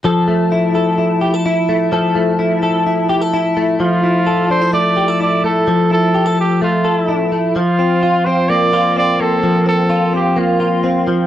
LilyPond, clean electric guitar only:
\new Staff \with { instrumentName = "Clean electric guitar" } { \time 4/4 \key f \major \tempo 4 = 128 <f a'>8 a8 e'8 a'8 e'8 g'16 a'16 e'8 a8 | <f a'>8 a8 e'8 a'8 e'8 g'16 a'16 e'8 a8 | f8 e'8 a'8 d'16 e'16 a8 g'16 a'16 e'8 a8 | f8 e'8 g'16 a'8. a8 a'8 e'8 a8 |
f8 c'8 f'8 c'8 bes8 f'8 c'8 bes8 | f8 c'8 f'8 c'8 bes8 f'8 c'8 f8 | }